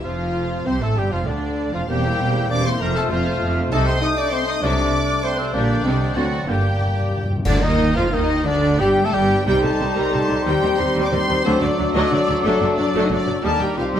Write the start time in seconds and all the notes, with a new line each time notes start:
0.03 F1 F2 F3 F4 F5
0.65 C2 C3 C4 C5 C6
0.80 A1 A2 A3 A4 A5
0.96 G1 G2 G3 G4 G5
1.11 F1 F2 F3 F4 F5
1.26 D2 D3 D4 D5
1.73 F1 F2 F3 F4 F5
1.88 E1 E2 G3 A#3 C4 G4 C5 G5 G6
2.04 A#3 E4
2.19 E1 E2 G3 C4
2.35 A#3 E4
2.50 E1 E2 G3 C4 D4 D5 D6
2.64 A#3 C4 E4 C5 C6
2.79 F1 F2 F3 A3 A#3 C4 A#4 C5 A#5 F6
2.95 A3 F4 A4 A5
3.09 F1 F2 F3 A3 C4 F4 C5 F5 F6
3.27 A3 F4
3.41 F1 F2 F3 C4
3.57 A3 F4
3.70 C2 C3 G3 A3 D#4 A4 D#5 A5 G6
3.86 C4 C5 C6
4.01 A3 D#4 D#5 D#6 G6
4.17 D4 D5 D6
4.31 A3 C4 C5 D#5 C6 G6
4.46 D#4 D#5 D#6
4.62 C2 C3 F#3 A3 D4 D5 D6 F#6
5.23 A3 C4 C5 D5 C6 F#6
5.38 C3 C4 C5
5.53 A#1 A#2 D3 G3 A#3 D4 D5 G6
5.84 C2 C3 G3 C4 D#5 G6
6.15 D2 D3 F#3 C4 F#4 D5 F#5 A6
6.47 G1 G2 D3 G3 A#3 G4 D5 G5 G6
6.71 G2
6.79 G2
6.86 G2
6.93 G2
7.01 G2
7.09 G2
7.16 G2
7.23 G2
7.30 G2
7.37 G2
7.45 D2 G2 D3 D4 D5, concert bass drum, crash
7.62 D#2 D#3 D#4 D#5
7.96 F1 F2 F3 F4 F5
8.12 D#2 D#3 D#4 D#5
8.45 D2 D3 D4 D5
8.79 G1 G2 G3 G4 G5
9.04 A2 A3 A4 A5
9.11 G1 G2 G3 G4 G5
9.44 C2 C3 G3 C4 D#4 G4 G5 C6
9.62 C2 C3 G3 A4 A5
9.80 C2 C3 D#3 G3
9.95 C2 C3 G3 A#4 A#5
10.12 C2 C3 G3 A4 A5
10.29 C2 C3 D#3 G3
10.44 D#2 D#3 G3 C4 G4 G5
10.62 D#2 D#3 G3
10.79 D#2 D#3 G3 C4 C5 C6
10.96 D#2 D#3 G3
11.04 D5 D6
11.11 D#2 D#3 G3 C4 C5 C6
11.28 D#2 D#3 G3
11.45 D2 D3 F#3 A3 C4 D4 A4 C5 D6
11.61 D2 D3 F#3 A3 D4 D5
11.79 D2 D3 F#3
11.93 D2 D3 F#3 A3 D#4 D#5
12.10 D2 D3 F#3 A3 D4 D5
12.28 D2 D3 F#3
12.43 F#1 F#2 F#3 A3 D4 A4
12.61 F#1 F#2 F#3 A3
12.77 F#1 F#2 F#3 D4 D5
12.94 F#1 F#2 F#3 A3
13.03 D#4 D#5
13.10 F#1 F#2 F#3 A3 D4 D5
13.25 F#1 F#2 F#3
13.42 D#2 G3 A#3 D#4 G4 A4 A#4 A5 D#6
13.60 D#2 G3 D4 G4 G5 D6
13.76 C2 D#3 G3 C4 F4 G4 C5 F5 C6
13.93 C2 G3 D#4 D#5